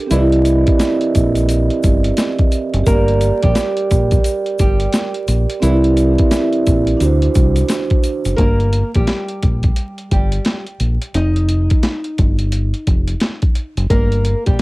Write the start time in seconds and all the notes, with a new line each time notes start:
0.06 C4 G4 A#4
0.10 C2 E3 E4 D5 D#5, closed hi-hat, shaker
0.20 E5
0.32 closed hi-hat
0.45 closed hi-hat, shaker
0.67 kick, closed hi-hat
0.79 snare, closed hi-hat, shaker
1.01 closed hi-hat
1.15 A#1, kick, closed hi-hat, shaker
1.35 closed hi-hat, shaker
1.49 closed hi-hat, shaker
1.70 closed hi-hat
1.83 G1, kick, closed hi-hat, shaker
2.04 closed hi-hat
2.17 snare, closed hi-hat, shaker
2.39 kick, closed hi-hat
2.52 closed hi-hat, shaker
2.74 F#1, closed hi-hat
2.84 G1 A#3 G4 A#4, kick, closed hi-hat, shaker
2.91 D5
3.08 closed hi-hat
3.21 closed hi-hat, shaker
3.43 A#1 G3 G4, kick, closed hi-hat
3.55 snare, closed hi-hat, shaker
3.77 closed hi-hat
3.91 A#1, kick, closed hi-hat, shaker
4.11 kick, closed hi-hat, shaker
4.24 closed hi-hat, shaker
4.46 closed hi-hat
4.59 G1 G3 G4, kick, closed hi-hat, shaker
4.80 closed hi-hat
4.93 snare, closed hi-hat, shaker
5.14 closed hi-hat
5.28 A#1, closed hi-hat, shaker
5.50 closed hi-hat
5.60 C2 E3 C4 E4 G4 A#4, closed hi-hat, shaker
5.65 D5 E5
5.84 closed hi-hat
5.97 closed hi-hat, shaker
6.18 kick, closed hi-hat
6.31 snare, closed hi-hat, shaker
6.53 closed hi-hat
6.67 A#1, kick, closed hi-hat, shaker
6.87 closed hi-hat
6.97 D2 D4 F#4, closed hi-hat
7.01 C5, shaker
7.22 closed hi-hat
7.35 C2, kick, closed hi-hat, shaker
7.56 closed hi-hat, shaker
7.68 snare, closed hi-hat, shaker
7.90 kick, closed hi-hat
8.04 closed hi-hat, shaker
8.25 F#1, closed hi-hat, shaker
8.37 G1 A#3 A#4, kick, closed hi-hat
8.60 closed hi-hat
8.73 closed hi-hat
8.94 A#1 G3 G4, kick, closed hi-hat
9.07 snare, closed hi-hat
9.28 closed hi-hat
9.42 A#1, kick, closed hi-hat
9.63 kick, closed hi-hat
9.76 closed hi-hat
9.98 closed hi-hat
10.11 G1 G3 G4, kick, closed hi-hat
10.32 closed hi-hat
10.45 snare, closed hi-hat
10.66 closed hi-hat
10.80 A#1, closed hi-hat
11.02 closed hi-hat
11.14 F1 D#4 D#5, closed hi-hat
11.36 closed hi-hat
11.49 closed hi-hat
11.70 kick, closed hi-hat
11.83 snare, closed hi-hat
12.04 closed hi-hat
12.18 G1, kick, closed hi-hat
12.39 closed hi-hat
12.52 closed hi-hat
12.74 closed hi-hat
12.87 F1, kick, closed hi-hat
13.08 closed hi-hat
13.20 snare, closed hi-hat
13.42 kick, closed hi-hat
13.55 closed hi-hat
13.77 F#1, closed hi-hat
13.90 G1 A#3 A#4, kick, closed hi-hat
14.12 closed hi-hat
14.25 closed hi-hat
14.46 A#1 G3 G4, kick, closed hi-hat